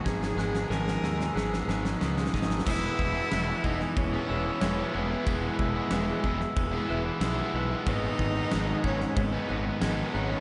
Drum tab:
CC |--------------------------------|x-------x-------x-------x-------|x-------x-------x-------x-------|x-------x-------x-------x-------|
SD |o-o-o-o-o-o-o-o-o-o-o-o-o-oooooo|--------o-----o---------o-------|--------o-----o---------o-------|--------o-----o---------o-------|
BD |o---------------------------o---|o---o-------o---o---------------|o---o-------o---o---------------|o---o-------o---o---------------|